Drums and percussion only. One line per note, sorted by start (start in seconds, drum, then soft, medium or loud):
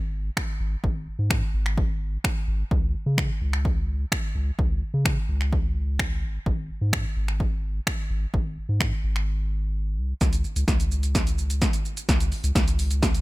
0.37 finger snap loud
0.37 kick loud
0.84 kick loud
1.30 finger snap loud
1.30 kick loud
1.66 finger snap medium
1.78 kick loud
2.24 finger snap loud
2.24 kick loud
2.71 kick loud
3.18 finger snap loud
3.18 kick loud
3.53 finger snap medium
3.65 kick loud
4.12 finger snap loud
4.12 kick loud
4.59 kick loud
5.05 finger snap loud
5.05 kick loud
5.41 finger snap medium
5.53 kick loud
5.99 finger snap loud
5.99 kick loud
6.46 kick loud
6.93 finger snap loud
6.93 kick loud
7.28 finger snap medium
7.40 kick loud
7.87 finger snap loud
7.87 kick loud
8.34 kick loud
8.80 finger snap loud
8.80 kick loud
9.16 finger snap medium
10.21 kick loud
10.21 snare medium
10.21 closed hi-hat medium
10.21 shaker medium
10.33 closed hi-hat medium
10.33 shaker medium
10.44 shaker soft
10.56 closed hi-hat medium
10.56 shaker medium
10.68 kick loud
10.68 snare medium
10.68 closed hi-hat medium
10.68 shaker medium
10.80 closed hi-hat medium
10.80 shaker medium
10.91 shaker medium
11.03 closed hi-hat medium
11.03 shaker medium
11.15 kick loud
11.15 snare medium
11.15 closed hi-hat medium
11.15 shaker medium
11.27 closed hi-hat soft
11.27 shaker medium
11.38 shaker medium
11.50 closed hi-hat medium
11.50 shaker medium
11.62 kick loud
11.62 snare medium
11.62 closed hi-hat medium
11.62 shaker medium
11.73 closed hi-hat medium
11.73 shaker medium
11.85 shaker soft
11.97 closed hi-hat medium
11.97 shaker medium
12.09 kick loud
12.09 snare medium
12.09 closed hi-hat medium
12.09 shaker medium
12.20 closed hi-hat medium
12.20 shaker medium
12.32 open hi-hat medium
12.32 shaker soft
12.44 closed hi-hat medium
12.44 shaker medium
12.55 kick loud
12.55 snare medium
12.55 closed hi-hat medium
12.55 shaker medium
12.68 closed hi-hat medium
12.68 shaker medium
12.79 open hi-hat medium
12.79 shaker medium
12.91 closed hi-hat medium
12.91 shaker medium
13.03 kick loud
13.03 snare medium
13.03 closed hi-hat medium
13.03 shaker medium
13.14 closed hi-hat soft
13.14 shaker medium